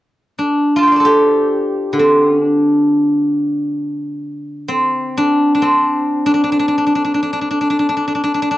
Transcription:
0.39 1.99 D4 soft
0.76 3.29 F4 soft
0.76 2.23 A5 soft
0.83 2.38 G5 soft
0.87 2.54 F5 soft
0.92 2.77 D5 soft
0.96 3.19 A4 soft
0.96 2.94 C5 soft
1.05 3.40 G4 medium
1.93 5.23 D3 soft
1.99 2.26 C4 soft
2.26 2.43 C#4 soft
2.43 4.79 D4 soft
4.68 5.61 C4 soft
5.17 5.54 D4 medium
5.55 6.26 D4 soft
5.62 8.58 C4 soft
6.26 6.33 D4 medium
6.34 6.43 D4 soft
6.44 6.52 D4 soft
6.52 6.59 D4 soft
6.59 6.68 D4 soft
6.68 6.77 D4 soft
6.78 6.86 D4 soft
6.87 6.95 D4 soft
6.95 7.04 D4 soft
7.05 7.14 D4 soft
7.14 7.22 D4 soft
7.23 7.32 D4 soft
7.33 7.41 D4 soft
7.41 7.50 D4 soft
7.51 7.61 D4 soft
7.61 7.70 D4 soft
7.70 7.79 D4 soft
7.79 7.89 D4 soft
7.89 7.96 D4 soft
7.97 8.07 D4 soft
8.08 8.14 D4 soft
8.15 8.23 D4 soft
8.24 8.34 D4 soft
8.34 8.42 D4 soft
8.42 8.50 D4 soft
8.51 8.58 D4 soft

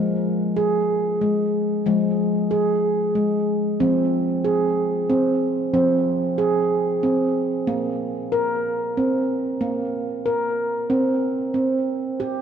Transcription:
0.00 1.82 F3 medium
0.00 0.57 G#3 medium
0.56 1.21 G#4 medium
1.21 1.85 G#3 medium
1.86 3.76 F3 medium
1.86 2.51 G#3 medium
2.51 3.16 G#4 medium
3.15 3.80 G#3 medium
3.80 5.70 F3 medium
3.80 4.45 C4 medium
4.44 5.09 G#4 medium
5.10 5.72 C4 medium
5.74 7.64 F3 medium
5.74 6.38 C4 medium
6.38 7.03 G#4 medium
7.03 7.68 C4 medium
7.67 8.32 A#3 medium
8.32 8.97 A#4 medium
8.97 9.62 C4 medium
9.61 11.51 A#3 medium
10.26 10.91 A#4 medium
10.90 11.53 C4 medium
11.54 12.42 C4 medium
12.20 12.42 G4 medium

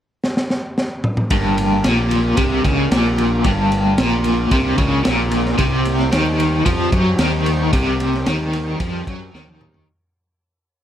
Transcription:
0.24 snare medium
0.37 snare medium
0.50 snare medium
0.78 snare medium
1.04 mid tom medium
1.17 mid tom loud
1.30 1.81 G1 medium
1.30 1.85 G2 loud
1.30 5.56 A#3 medium
1.30 5.56 D4 medium
1.30 3.44 G4 medium
1.30 5.56 A#4 medium
1.30 kick loud
1.30 ride medium
1.58 ride medium
1.58 high conga medium
1.73 high conga medium
1.84 2.35 A#1 medium
1.84 2.38 A#2 loud
1.84 snare loud
1.84 ride loud
1.84 low conga medium
1.99 high conga medium
2.11 ride medium
2.11 high conga medium
2.11 low conga medium
2.37 2.63 C2 medium
2.37 2.64 C3 loud
2.37 kick loud
2.37 ride medium
2.65 2.90 C#2 loud
2.65 2.91 C#3 loud
2.65 kick loud
2.65 ride medium
2.65 low conga medium
2.91 3.41 A#1 loud
2.91 3.45 A#2 medium
2.91 snare loud
2.91 ride medium
3.18 ride medium
3.18 low conga medium
3.44 3.95 G1 medium
3.44 3.98 G2 loud
3.44 5.57 F4 medium
3.44 kick loud
3.44 ride medium
3.72 ride medium
3.72 high conga medium
3.85 high conga medium
3.98 4.49 A#1 medium
3.98 4.52 A#2 loud
3.98 snare loud
3.98 ride medium
3.98 low conga medium
4.12 high conga medium
4.24 ride medium
4.24 high conga medium
4.24 low conga medium
4.51 4.76 C2 medium
4.51 4.78 C3 loud
4.51 kick loud
4.51 ride medium
4.78 5.03 C#2 loud
4.78 5.04 C#3 loud
4.78 kick loud
4.78 ride medium
4.78 low conga medium
5.04 5.56 A#1 loud
5.04 5.58 A#2 medium
5.04 snare loud
5.04 ride medium
5.31 ride medium
5.31 low conga medium
5.45 snare soft
5.58 6.09 C2 medium
5.58 6.11 C3 loud
5.58 9.85 G3 medium
5.58 9.85 C4 medium
5.58 9.85 G4 medium
5.58 7.72 C5 medium
5.58 kick loud
5.58 ride medium
5.85 ride medium
5.85 high conga medium
5.99 snare soft
5.99 high conga medium
6.12 6.63 D#2 medium
6.12 6.65 D#3 loud
6.12 snare loud
6.12 ride medium
6.12 low conga medium
6.26 high conga medium
6.40 ride medium
6.40 high conga medium
6.40 low conga medium
6.66 6.91 F2 medium
6.66 6.92 F3 loud
6.66 kick medium
6.66 ride medium
6.92 7.18 F#2 loud
6.92 7.19 F#3 medium
6.92 kick loud
6.92 ride medium
6.92 low conga medium
7.19 7.69 D#2 loud
7.19 7.73 D#3 loud
7.19 snare loud
7.19 ride loud
7.46 ride medium
7.46 low conga medium
7.73 8.23 C2 medium
7.73 8.26 C3 loud
7.73 9.87 A#4 medium
7.73 kick loud
7.73 ride loud
8.00 ride medium
8.00 high conga medium
8.13 snare soft
8.13 high conga medium
8.26 8.77 D#2 medium
8.26 8.80 D#3 loud
8.26 snare loud
8.26 ride medium
8.26 low conga medium
8.41 high conga medium
8.53 ride medium
8.53 high conga medium
8.53 low conga medium
8.80 9.05 F2 medium
8.80 9.07 F3 loud
8.80 kick loud
8.80 ride medium
9.07 9.33 F#2 loud
9.07 9.34 F#3 loud
9.07 kick medium
9.07 ride medium
9.07 low conga medium
9.34 9.85 D#2 loud
9.34 9.88 D#3 medium
9.34 snare medium
9.48 high tom medium
9.61 mid tom medium
9.61 low conga medium
9.74 floor tom medium

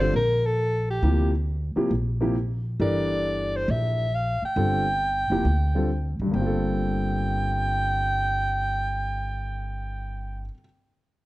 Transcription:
0.00 0.13 D3 medium
0.00 0.13 G3 medium
0.00 0.13 C4 medium
0.00 0.13 F4 medium
0.00 0.13 A4 medium
0.00 0.14 C5 medium
0.14 0.98 A#1 medium
0.14 0.47 A#4 medium
0.46 0.89 A4 medium
0.91 1.31 G4 medium
1.02 1.73 D2 medium
1.02 1.30 C3 medium
1.02 1.30 F3 medium
1.02 1.30 A#3 medium
1.02 1.30 E4 medium
1.02 1.30 G4 medium
1.76 1.89 C3 medium
1.76 1.89 F3 medium
1.76 1.89 A#3 medium
1.76 1.90 E4 medium
1.76 1.89 G4 medium
1.76 muted upright bass stroke soft
1.91 2.75 A#1 medium
2.21 2.34 C3 medium
2.21 2.34 F3 medium
2.21 2.34 A#3 medium
2.21 2.34 E4 medium
2.21 2.34 G4 medium
2.79 3.64 G1 medium
2.79 4.04 E3 medium
2.79 4.04 D4 medium
2.79 4.04 G4 medium
2.79 4.04 A4 medium
2.79 4.04 A#4 medium
2.79 3.58 D5 medium
3.56 3.72 C5 medium
3.68 4.38 A#1 medium
3.68 4.17 E5 medium
4.15 4.44 F5 loud
4.42 6.17 G5 loud
4.42 muted upright bass stroke soft
4.56 5.27 G1 medium
4.56 4.83 D3 medium
4.56 4.83 G3 medium
4.56 4.84 C4 medium
4.56 4.84 F4 medium
4.56 4.84 A4 medium
5.30 5.44 F1 medium
5.30 5.44 C3 medium
5.30 5.44 F3 medium
5.30 5.44 A#3 medium
5.30 5.44 E4 medium
5.30 5.44 G4 medium
5.45 6.16 D2 medium
5.75 5.88 D3 medium
5.75 5.88 G3 medium
5.75 5.88 C4 medium
5.75 5.88 F4 medium
5.75 5.89 A4 medium
6.20 6.33 D2 medium
6.20 10.40 G2 medium
6.27 10.45 D3 medium
6.31 10.48 G1 medium
6.31 10.50 A#3 medium
6.31 10.49 G5 medium
6.36 10.54 C4 medium
6.41 10.60 F4 medium
6.47 10.65 A4 medium

